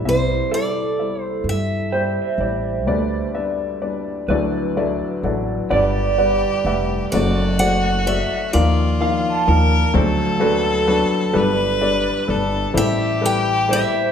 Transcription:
0.00 0.39 C2 medium
0.00 0.45 A4 medium
0.00 0.47 D5 medium
0.05 2.83 C2 medium
0.05 2.83 C3 soft
0.05 0.42 G3 medium
0.05 0.42 E4 medium
0.05 0.42 C5 medium
0.05 0.54 C5 medium
0.05 0.42 E5 medium
0.51 0.84 G3 medium
0.51 0.84 E4 soft
0.51 3.30 A4 medium
0.51 0.84 C5 soft
0.51 1.22 D5 medium
0.51 0.84 E5 medium
0.99 1.63 G3 soft
0.99 1.63 E4 soft
0.99 1.64 C5 soft
0.99 1.64 E5 medium
1.22 1.49 C5 medium
1.44 2.16 G2 medium
1.49 4.74 E5 medium
1.92 2.25 G3 medium
1.92 2.25 E4 medium
1.92 3.30 C5 medium
1.92 2.25 C5 medium
1.92 2.25 G5 medium
2.22 3.56 E5 soft
2.38 2.86 A1 medium
2.38 2.86 G3 medium
2.38 2.87 E4 medium
2.38 2.87 C5 medium
2.38 2.86 D5 medium
2.86 3.22 D2 medium
2.86 4.24 D2 medium
2.86 4.25 D3 medium
2.86 3.25 G3 medium
2.86 3.24 D4 medium
2.86 3.25 B4 medium
2.86 3.25 D5 medium
3.34 3.67 G3 medium
3.34 3.67 D4 medium
3.34 3.67 B4 medium
3.34 3.67 E5 medium
3.81 4.29 G3 medium
3.81 4.28 D4 medium
3.81 4.29 B4 medium
3.81 4.29 D5 medium
4.28 5.00 D2 medium
4.28 5.67 D2 medium
4.28 5.67 D3 medium
4.28 4.67 F#3 medium
4.28 4.67 E4 medium
4.28 4.67 A4 medium
4.28 6.14 B4 soft
4.28 4.67 D5 medium
4.77 5.09 F#3 medium
4.77 5.09 E4 medium
4.77 5.09 A4 medium
4.77 5.09 D5 medium
4.77 5.20 E5 medium
5.23 5.59 A1 medium
5.23 5.71 F#3 medium
5.23 5.71 E4 medium
5.23 5.71 A4 medium
5.23 5.69 D5 medium
5.23 5.68 F#5 medium
5.70 7.09 G1 medium
5.70 6.43 G1 medium
5.70 7.09 G2 medium
5.70 6.08 G3 medium
5.70 7.09 G4 medium
5.70 6.08 B4 medium
5.70 6.08 D5 medium
5.70 7.56 D5 medium
5.70 6.08 F#5 medium
6.18 6.51 G3 medium
6.18 6.51 B4 medium
6.18 6.51 D5 medium
6.18 6.51 F#5 medium
6.65 7.01 F1 medium
6.65 7.13 G3 medium
6.65 7.13 B4 medium
6.65 7.13 E5 medium
6.65 7.13 F#5 medium
7.12 8.20 F#1 medium
7.12 8.51 F#1 medium
7.12 8.51 F#2 medium
7.12 7.51 A3 medium
7.12 8.55 F#4 loud
7.12 7.51 F#4 medium
7.12 7.51 C5 medium
7.12 7.59 D5 medium
7.12 7.51 D5 medium
7.59 7.92 A3 medium
7.59 7.92 F#4 medium
7.59 7.93 C5 medium
7.59 7.92 D5 medium
7.59 8.03 F#5 loud
8.06 8.54 A3 medium
8.06 8.54 F#4 medium
8.06 8.54 C5 medium
8.06 8.54 D5 medium
8.06 8.53 E5 medium
8.53 9.91 D#2 medium
8.53 9.25 D#2 medium
8.53 8.91 F3 medium
8.53 8.91 D#4 medium
8.53 9.50 F4 medium
8.53 8.91 A#4 medium
8.53 10.38 D5 medium
8.53 8.91 F5 medium
9.00 9.33 F3 medium
9.00 9.33 D#4 medium
9.00 9.33 A#4 medium
9.00 9.33 F5 medium
9.00 10.38 F5 medium
9.30 10.64 A5 soft
9.47 9.83 D#2 medium
9.47 9.95 F3 medium
9.47 9.94 D#4 soft
9.47 9.95 A#4 medium
9.47 9.96 A#4 loud
9.47 9.95 F5 medium
9.93 11.31 D2 medium
9.93 11.01 D2 medium
9.93 11.31 D3 medium
9.93 10.32 F#3 medium
9.93 10.32 D4 medium
9.93 10.32 A4 medium
9.93 11.39 A4 loud
9.93 10.32 C5 medium
10.40 10.73 F#3 medium
10.40 10.73 D4 medium
10.40 10.73 A4 medium
10.40 11.79 A4 medium
10.40 10.74 B4 medium
10.87 11.35 F#3 medium
10.87 11.32 D4 medium
10.87 11.32 A4 medium
10.87 11.32 B4 medium
11.33 12.71 G1 medium
11.33 12.06 G1 medium
11.33 12.71 G2 medium
11.33 11.72 G3 medium
11.33 11.72 D4 medium
11.33 11.72 A4 medium
11.33 11.72 B4 medium
11.37 12.32 B4 loud
11.81 12.14 G3 medium
11.81 12.14 D4 medium
11.81 12.14 A4 medium
11.81 12.14 D5 medium
12.28 12.65 G1 medium
12.28 12.72 G3 medium
12.28 12.76 D4 medium
12.28 12.72 A4 medium
12.28 12.76 A4 loud
12.28 12.76 B4 medium
12.73 14.12 A1 medium
12.73 13.82 A1 medium
12.73 14.12 A2 medium
12.73 13.12 G3 medium
12.73 13.13 E4 medium
12.73 14.12 G4 loud
12.73 13.13 A4 medium
12.73 13.13 C5 medium
12.77 13.21 E5 medium
13.21 13.55 G3 medium
13.21 13.55 E4 medium
13.21 13.55 A4 medium
13.21 13.55 B4 medium
13.26 13.72 G5 medium
13.68 14.12 G3 medium
13.68 14.12 E4 medium
13.68 14.12 A4 medium
13.68 14.12 C5 medium
13.73 14.12 E5 medium

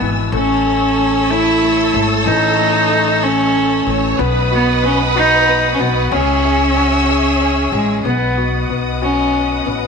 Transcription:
0.00 0.31 G#1 medium
0.00 0.29 B2 medium
0.00 0.35 E3 medium
0.00 0.34 E4 medium
0.00 0.29 B4 medium
0.00 0.29 G#5 medium
0.00 0.28 E6 medium
0.32 1.89 A1 loud
0.32 0.64 A3 medium
0.32 1.32 C#4 medium
0.32 3.82 A4 loud
0.32 4.15 C#5 medium
0.32 4.15 A5 medium
0.32 4.15 E6 medium
0.66 0.97 A3 medium
0.98 1.29 A3 medium
1.30 1.61 A3 medium
1.30 1.94 E4 loud
1.62 1.93 A3 medium
1.94 2.24 G#1 medium
1.94 2.58 A3 medium
2.26 3.83 A1 loud
2.26 4.15 E3 medium
2.26 3.25 D#4 loud
2.59 2.91 A3 medium
2.92 3.22 A3 medium
3.23 3.53 A3 medium
3.23 3.95 C#4 medium
3.55 3.86 A3 medium
3.86 4.17 A1 medium
3.86 4.18 A3 medium
3.86 4.18 C#5 loud
4.18 5.76 B1 loud
4.18 4.82 B3 medium
4.18 6.10 B4 medium
4.18 6.12 B4 loud
4.18 6.09 D#5 medium
4.18 6.09 F#5 medium
4.18 6.10 D#6 medium
4.51 4.82 B3 medium
4.51 5.14 F#4 medium
4.84 5.46 B3 medium
4.84 4.99 C#4 medium
5.16 5.70 D#4 loud
5.16 5.78 F#4 medium
5.48 6.10 B3 medium
5.74 5.82 C#4 medium
5.79 6.09 B1 medium
5.79 6.15 B3 medium
5.79 6.11 F#4 medium
6.11 7.69 C#2 loud
6.11 6.75 C#4 medium
6.11 7.73 C#4 medium
6.11 6.72 G#4 loud
6.11 8.03 C#5 medium
6.11 8.03 E5 medium
6.11 8.03 G#5 medium
6.11 8.03 E6 medium
6.45 7.08 G#4 medium
6.76 7.40 C#4 medium
6.76 7.08 F#4 medium
7.08 7.71 G#4 medium
7.08 7.72 G#4 medium
7.41 8.03 C#4 medium
7.72 8.03 A1 medium
7.72 8.03 G#3 medium
7.72 8.02 G#4 medium
7.72 8.04 G#4 medium
8.03 8.65 B1 medium
8.03 8.69 B3 medium
8.03 8.66 B3 medium
8.03 9.87 B4 medium
8.03 9.87 D#5 medium
8.03 9.87 F#5 medium
8.03 9.87 D#6 medium
8.38 9.00 F#4 soft
8.69 9.62 B1 medium
8.69 9.64 B3 soft
9.02 9.63 C#4 medium
9.02 9.87 F#4 soft
9.65 9.87 A1 medium
9.65 9.87 B3 soft

